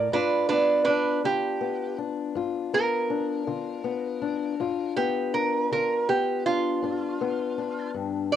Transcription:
0.00 0.12 A2 medium
0.00 0.13 G4 medium
0.12 0.79 G2 medium
0.12 0.47 D4 medium
0.12 1.25 F4 medium
0.12 0.48 B4 medium
0.49 1.61 B3 medium
0.49 0.84 D4 medium
0.49 0.84 B4 medium
0.85 1.20 D4 medium
0.85 1.98 D4 medium
0.85 1.21 B4 medium
1.24 1.91 D3 medium
1.24 2.36 F4 medium
1.24 1.97 G4 medium
1.61 2.72 B3 medium
1.98 3.09 D4 medium
2.35 3.02 G2 medium
2.35 3.46 F4 medium
2.73 3.83 B3 medium
2.73 4.92 A#4 medium
3.10 4.21 D4 medium
3.47 4.14 D3 medium
3.47 4.54 F4 medium
3.84 4.54 B3 medium
4.21 5.34 D4 medium
4.60 5.26 G2 medium
4.60 5.71 F4 medium
4.96 6.08 B3 medium
4.96 5.32 G4 medium
5.34 6.47 D4 medium
5.34 5.69 A#4 medium
5.72 6.38 D3 medium
5.72 8.36 F4 medium
5.72 6.07 A#4 medium
6.09 7.20 B3 medium
6.09 6.44 G4 medium
6.46 6.83 D4 medium
6.46 7.90 F4 medium
6.82 7.49 G2 medium
6.82 7.57 D4 medium
7.21 8.36 B3 medium
7.58 8.36 D4 medium
7.94 8.31 G2 medium
8.32 8.36 F2 medium
8.32 8.36 D5 medium

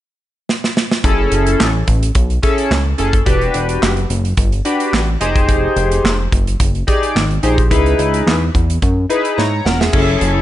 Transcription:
0.49 snare medium
0.64 snare medium
0.77 snare medium
0.92 snare medium
1.04 1.28 F#1 loud
1.04 1.67 C#4 medium
1.04 1.67 E4 medium
1.04 1.68 G#4 medium
1.04 1.68 A4 medium
1.04 kick loud
1.04 closed hi-hat medium
1.32 1.55 F#1 loud
1.32 closed hi-hat medium
1.47 closed hi-hat medium
1.60 1.83 A1 medium
1.60 snare loud
1.60 clap medium
1.88 2.11 A1 loud
1.88 kick medium
1.88 closed hi-hat medium
2.03 closed hi-hat medium
2.15 2.39 B1 loud
2.15 kick loud
2.15 closed hi-hat medium
2.30 closed hi-hat soft
2.42 2.74 C#4 medium
2.42 2.75 E4 medium
2.42 2.75 G#4 medium
2.42 2.75 A4 medium
2.42 kick medium
2.42 closed hi-hat medium
2.58 closed hi-hat soft
2.71 2.94 C#2 medium
2.71 snare loud
2.71 clap medium
2.98 3.22 F#1 medium
2.98 3.12 C#4 medium
2.98 3.12 E4 medium
2.98 3.13 G#4 medium
2.98 3.13 A4 medium
2.98 closed hi-hat medium
3.13 kick medium
3.13 closed hi-hat soft
3.26 3.50 E1 loud
3.26 3.89 D4 medium
3.26 3.90 F#4 medium
3.26 3.90 G4 medium
3.26 3.90 B4 medium
3.26 kick medium
3.26 closed hi-hat medium
3.41 closed hi-hat soft
3.54 3.78 E1 loud
3.54 closed hi-hat medium
3.69 closed hi-hat soft
3.82 4.06 F#1 medium
3.82 snare loud
3.82 clap medium
3.97 closed hi-hat soft
4.10 4.33 F#1 medium
4.10 closed hi-hat medium
4.25 closed hi-hat medium
4.37 4.61 G1 loud
4.37 kick loud
4.37 closed hi-hat medium
4.52 closed hi-hat soft
4.65 4.97 D4 medium
4.65 4.97 F#4 medium
4.65 4.97 G4 medium
4.65 4.97 B4 medium
4.65 closed hi-hat medium
4.80 closed hi-hat soft
4.93 5.17 A1 medium
4.93 snare loud
4.93 clap medium
5.20 5.68 F1 medium
5.20 6.10 D#4 medium
5.20 6.10 G4 medium
5.20 6.10 G#4 medium
5.20 6.10 C5 loud
5.20 closed hi-hat medium
5.36 kick medium
5.36 closed hi-hat soft
5.49 kick loud
5.49 closed hi-hat medium
5.76 6.00 F1 loud
5.76 closed hi-hat medium
5.92 closed hi-hat soft
6.04 6.28 F1 medium
6.04 snare loud
6.04 clap medium
6.32 6.56 F#1 medium
6.32 kick medium
6.32 closed hi-hat medium
6.47 closed hi-hat medium
6.60 6.83 F#1 medium
6.60 kick medium
6.60 closed hi-hat medium
6.75 closed hi-hat soft
6.87 7.19 D#4 medium
6.87 7.19 G4 medium
6.87 7.19 G#4 medium
6.87 7.19 D5 loud
6.87 kick medium
6.87 closed hi-hat medium
7.03 closed hi-hat medium
7.16 7.39 G#1 medium
7.16 snare loud
7.16 clap medium
7.31 closed hi-hat soft
7.43 7.73 A#1 medium
7.43 7.57 D#4 medium
7.43 7.57 G4 medium
7.43 7.57 G#4 medium
7.43 7.58 C5 medium
7.43 closed hi-hat medium
7.58 kick medium
7.58 closed hi-hat soft
7.70 7.95 C#2 loud
7.70 8.34 D#4 medium
7.70 8.34 E4 medium
7.70 8.34 G#4 medium
7.70 8.34 B4 medium
7.70 kick loud
7.70 closed hi-hat medium
7.86 closed hi-hat soft
7.99 8.22 C#2 medium
7.99 closed hi-hat medium
8.14 closed hi-hat soft
8.27 8.50 E2 medium
8.27 snare loud
8.27 clap medium
8.55 8.78 E2 medium
8.55 kick medium
8.55 closed hi-hat medium
8.70 closed hi-hat medium
8.82 9.06 F#2 loud
8.82 kick medium
8.82 closed hi-hat medium
9.09 9.41 D#4 medium
9.09 9.41 E4 medium
9.09 9.38 G#4 medium
9.09 9.38 B4 medium
9.09 closed hi-hat medium
9.25 closed hi-hat soft
9.38 9.61 G#2 medium
9.38 9.64 C#5 medium
9.38 9.64 A#5 medium
9.38 snare medium
9.65 9.89 E1 medium
9.65 9.80 A#4 medium
9.65 9.79 F#5 medium
9.65 snare medium
9.80 9.92 G#4 medium
9.80 10.06 E5 medium
9.80 snare medium
9.93 10.17 F#1 loud
9.93 10.42 C#4 medium
9.93 10.42 E4 medium
9.93 10.42 G#4 medium
9.93 10.42 A4 medium
9.93 kick loud
9.93 crash medium
10.21 10.42 F#1 loud
10.21 closed hi-hat medium

